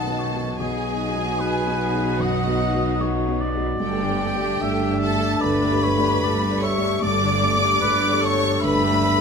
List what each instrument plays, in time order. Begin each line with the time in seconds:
Already playing: double bass section B1, felt piano F#2 B3 F#4 D#5, cello section B2, harp B2 F#3 B3 F#4 B4 F#5 B5, french horn section D#3 F#3, viola section D#3 F#4, violin section A4 A5, oboe D#5, flute section A5
0.00 harp D#4
0.07 felt piano B3 F#4 D#5
0.19 harp F#4, oboe C#5
0.34 felt piano B3 F#4 D#5
0.39 harp B3
0.58 double bass section B1, felt piano B1, cello section B2, harp B2, french horn section F#3 D#4, viola section D#4 F#4, violin section G#4 G#5, oboe D#5, flute section G#5
0.78 harp F#3
0.87 felt piano B3 F#4 D#5
0.98 harp B3
1.14 felt piano B3 F#4 D#5
1.19 harp F#4
1.40 felt piano B3 F#4 D#5, oboe B4
1.60 harp B4
1.67 felt piano B3 F#4 D#5
1.79 harp F#5
1.94 felt piano B3 F#4
2.19 felt piano F#2, violin section F#4 F#5, oboe D#5, harp F#5, flute section F#5
2.47 felt piano B3 F#4 D#5
2.61 harp F#5
2.74 felt piano B3 F#4 D#5
3.00 felt piano B3 F#4 D#5, oboe C#5, harp F#5
3.28 felt piano B3 F#4 D#5
3.40 harp F#4, oboe D5
3.54 felt piano B3 F#4 D#5
3.60 harp B3
3.79 double bass section G1, cello section G2, harp G2, felt piano G2, french horn section A3 D4, viola section A3 A4, violin section G4 G5, flute section G5
4.00 harp D3, viola section D4 G4
4.09 felt piano A3 G4 D5
4.21 harp A3, viola section A3 A4
4.35 felt piano A3 G4 D5
4.40 viola section D4 G4, harp G4
4.60 double bass section G1, cello section G2, viola section A3 A4, felt piano A3 G4 D5, harp D4, oboe E5
4.81 viola section D4 G4, harp A4
4.90 felt piano A3 G4 D5
5.00 viola section A3 A4, violin section A4 A5, harp G5, flute section A5
5.16 felt piano A3 G4 D5
5.22 viola section D4 G4
5.40 double bass section G1, felt piano D2, cello section G2, viola section A3 A4, violin section B4 B5, oboe D5, harp G5, flute section B5
5.62 viola section D4 G4
5.70 felt piano A3 G4 D5
5.81 viola section A3 A4, oboe C#5, harp G5
5.97 felt piano A3 G4 D5
6.02 viola section D4 G4
6.22 double bass section G1, cello section G2, viola section A3 A4, felt piano A3 G4 D5, oboe D5, harp G5
6.42 viola section D4 G4
6.49 felt piano A3 G4 D5
6.62 viola section A3 A4, harp G4, violin section C#5 C#6, oboe E5, flute section C#6
6.76 felt piano A3 G4 D5
6.82 harp A3, viola section D4 G4
7.01 double bass section G1, cello section G2, felt piano G2, harp G2, viola section A3 A4, french horn section A3 D4, oboe D5, violin section D5 D6, flute section D6
7.21 harp D3, viola section D4 G4
7.30 felt piano A3 G4 D5
7.42 viola section A3 A4, harp A3
7.57 felt piano A3 G4 D5
7.62 viola section D4 G4, harp G4
7.81 double bass section G1, cello section G2, viola section A3 A4, felt piano A3, oboe B4
7.85 felt piano G4 D5
8.02 viola section D4 G4, harp A4
8.11 felt piano A3 G4 D5
8.21 viola section A3 A4, oboe A4, violin section C#5 C#6, harp G5, flute section C#6
8.38 felt piano A3 G4 D5
8.43 viola section D4 G4, harp D6
8.61 double bass section G1, felt piano D2, cello section G2, viola section A3 A4, violin section B4 B5, oboe E5, harp G5, flute section B5
8.83 viola section D4 G4, harp D6
8.90 felt piano A3 G4 D5
9.03 viola section A3 A4, harp G5
9.17 felt piano A3 G4